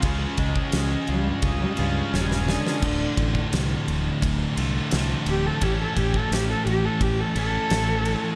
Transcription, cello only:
1.10 G3
1.27 G2
1.61 G3
1.78 G2
2.13 G3
2.30 G2
2.48 D3
5.29 G4
5.46 A4
5.63 G4
5.82 A4
5.98 G4
6.16 A4
6.32 G4
6.51 A4
6.67 G4
6.85 A4
7.02 G4
7.20 A4
7.38 A4

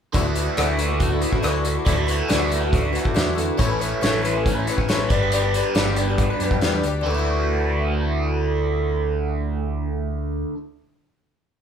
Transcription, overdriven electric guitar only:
0.13 D3 D4 F#4 A4
1.86 D3 D4 F#4 A4
3.58 A2 A3 C#4 E4 A4
5.09 G3 B3 D4 B4
7.04 D3 A3 D4
7.08 F#4

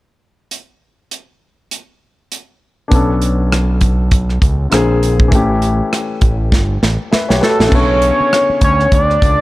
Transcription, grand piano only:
2.88 B3 D4
2.93 C#4 A4
4.70 D3 A#3 C4 G#4
5.28 E3 A3
5.33 C#4 G4
7.11 B4 E5
7.29 G4 C#5
7.41 F#4 B4
7.58 E4 A4
7.67 D3 B3
7.72 C#3 A4

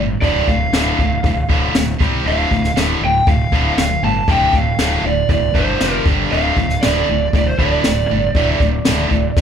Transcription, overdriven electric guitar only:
Already playing: D2 A2
0.21 D2 A2 D3
0.49 D2 A2
0.73 D2 A2 D3
0.99 D2 A2
1.23 D2 A2
1.49 D2 A2 D3
1.75 D2 A2
2.01 C3 G3 C4
2.27 D2 A2 D3
2.51 D2 A2
2.76 D2 A2 D3
3.03 D2 A2
3.27 D2 A2
3.53 D2 A2 D3
3.77 D2 A2
4.03 D2 A2
4.28 D2 A2 D3
4.54 D2 A2
4.79 D2 A2 D3
5.05 D2 A2
5.30 D2 A2
5.55 D2 A2 D3
5.81 F2 C3 F3
6.06 G2 D3 G3
6.32 D2 A2 D3
6.58 D2 A2
6.83 D2 A2 D3
7.09 D2 A2
7.33 D2 A2
7.59 D2 A2 D3
7.85 D2 A2
8.10 D2 A2
8.35 D2 A2 D3
8.60 D2 A2
8.85 D2 A2 D3
9.11 D2 A2
9.37 D2 A2

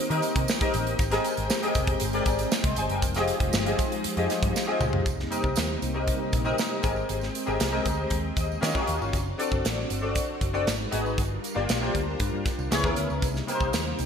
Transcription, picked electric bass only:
0.10 D#3
0.36 C3
0.75 A1
0.99 G#1
1.38 G#1
1.75 F1
2.01 G1
2.26 G#1
2.64 C2
2.78 G1
2.90 F#1
3.03 F1
3.41 F1
3.53 G1
4.05 muted picked electric bass stroke
4.17 F2
4.43 G2
4.80 C#2
5.06 C2
5.44 C2
5.57 D#2
5.83 C2
6.33 A#1
6.84 G#1
7.10 G#1
7.48 G#1
7.60 C2
7.85 D2
8.11 D#2
8.37 D#2
8.63 D#3
8.88 D#2
9.01 G1
9.14 F#1
9.52 F#1
9.65 A1
9.90 G1
10.41 F#1
10.67 G#1
10.93 G#1
11.18 G1
11.56 G1
11.69 A#1
11.95 D2
12.20 G2
12.34 G2
12.59 C2
12.71 C#2
12.84 D#2
12.97 D2
13.10 C#2
13.22 C2
13.61 C2
13.74 D#2
13.99 C2

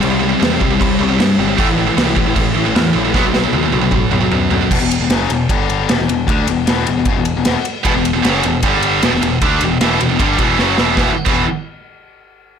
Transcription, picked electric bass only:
0.04 C2
0.42 E2
0.61 C2
0.81 C2
1.01 C2
1.19 G2
1.39 G1
1.59 A1
1.97 C2
2.17 A1
2.36 A1
2.55 A1
2.75 E2
2.95 A#1
3.15 B1
3.54 D#2
3.73 B1
3.92 B1
4.12 B1
4.32 F#2
4.52 F#2
4.71 E1
4.81 E1
5.00 E1
5.10 F#1
5.30 E1
5.50 G1
5.90 E1
5.99 E1
6.10 E1
6.28 D2
6.48 E1
6.69 E1
6.89 E1
6.98 E1
7.06 F#1
7.17 E1
7.36 E1
7.47 E1
7.85 E1
7.95 E1
8.15 E1
8.25 F#1
8.44 E1
8.63 G1
9.03 E1
9.13 E1
9.22 E1
9.42 D2
9.61 E1
9.81 E1
10.01 E1
10.10 E1
10.20 G1
10.39 E1
10.58 F#1
10.79 E1
10.97 E1
11.27 E1

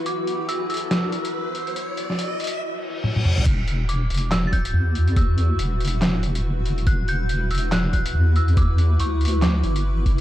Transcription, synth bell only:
0.06 D6
0.49 E6
0.70 E6
3.89 D6
4.32 E6
4.47 A6
4.53 G6
5.17 E6
6.87 F#6
7.09 G6
7.51 E6
7.72 F#6
7.93 F#6
8.36 E6
8.57 D6
9.00 C#6
9.43 D6

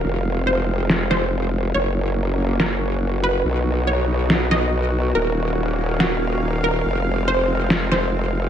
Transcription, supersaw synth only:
Already playing: F5
0.04 G#3 C4
1.75 A#3 C#4 F#4
3.45 B3 D#4
5.15 D#3 A#3 C#4 F5
6.85 G#3 C4

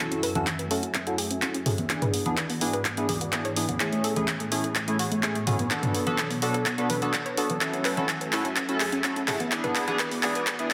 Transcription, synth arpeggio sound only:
0.11 C#4
0.23 B4
0.35 C#4
0.47 C#4
0.59 C#4
0.71 A4
0.83 C#4
0.95 C#4
1.07 C#4
1.18 G#4
1.31 C#4
1.42 C#4
1.54 C#4
1.66 G#4
1.78 B3
1.90 B3
2.02 B4
2.14 B3
2.26 B3
2.38 B4
2.50 B3
2.61 B3
2.73 B4
2.85 B3
2.97 B3
3.09 G#4
3.21 B3
3.33 B3
3.45 C#5
3.56 B3
3.69 B3
3.80 G#4
3.93 A3
4.04 A4
4.16 A3
4.28 A3
4.40 A3
4.52 G#4
4.64 A3
4.76 A3
4.88 A3
4.99 F#4
5.12 A3
5.23 A3
5.35 A3
5.47 F#4
5.59 B3
5.71 B3
5.83 A4
5.94 B3
6.07 B3
6.18 A4
6.31 B3
6.42 B3
6.54 A4
6.66 B3
6.78 B3
6.90 B4
7.02 B3
7.14 B3
7.26 C#5
7.37 B3
7.50 B3
7.61 A4
7.73 C#4
7.85 B4
7.97 C#4
8.09 C#4
8.21 C#4
8.33 A4
8.45 C#4
8.56 C#4
8.69 C#4
8.80 G#4
8.92 C#4
9.04 C#4
9.16 C#4
9.28 G#4
9.40 B3
9.52 B3
9.64 B4
9.75 B3
9.88 B3
9.99 B4
10.11 B3
10.23 B3
10.35 B4
10.47 B3
10.59 B3

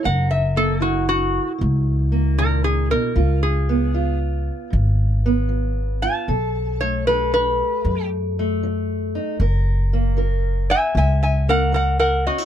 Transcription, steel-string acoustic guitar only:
0.03 F#2 A#4
0.56 A#3
0.80 F#3 E4
1.58 C#3
2.12 A#3
2.38 A#2
2.90 B2
3.16 C#3 F4
3.69 B3
3.94 F3 F4
4.70 G#2
5.26 B3
5.49 F3
6.03 F4
6.28 B2 A4
6.82 A3
7.08 F#3 A4
7.86 F#2
8.39 A3
8.63 F#3
9.15 D#4
9.41 F#2 A#4
9.93 A#3
10.17 F#3 A#4
10.95 C#3
11.48 A#3
11.72 F#3
12.28 C#4
12.38 E4

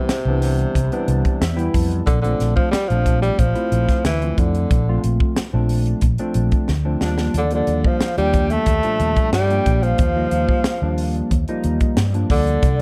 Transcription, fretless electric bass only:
0.09 muted fretless electric bass stroke
0.25 C2
0.75 C2
1.08 C2
1.41 E2
1.74 F2
2.07 A#1
2.40 A#1
2.73 muted fretless electric bass stroke
2.90 A#1
3.39 A#1
3.72 A#1
4.04 D2
4.38 F2
4.71 A#1
5.04 A#1
5.37 muted fretless electric bass stroke
5.53 A#1
6.02 A#1
6.35 A#1
6.68 D2
7.01 D#2
7.34 D#2
7.67 D#2
8.01 muted fretless electric bass stroke
8.17 D#2
8.66 D#2
9.00 D#2
9.32 G2
9.66 A#1
9.99 D#2
10.31 D#2
10.65 muted fretless electric bass stroke
10.82 D#2
11.31 D#2
11.64 D#2
11.97 G2
12.30 D2
12.63 C2

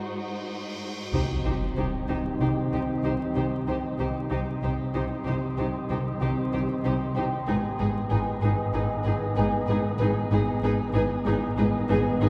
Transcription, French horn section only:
1.13 D#3 C4
4.30 D#3 C4
7.48 D#3 B3
10.61 D#3 B3

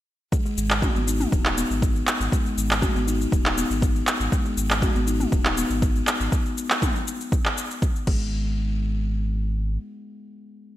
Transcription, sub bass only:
0.57 G#1
0.95 G#1
1.32 D#1
1.70 G#1
2.20 G#1
2.57 G#1
2.95 G#1
3.32 D#1
3.70 G#1
4.20 G#1
4.57 G#1
4.95 G#1
5.32 D#1
5.70 G#1
6.20 G#1
8.07 G#1

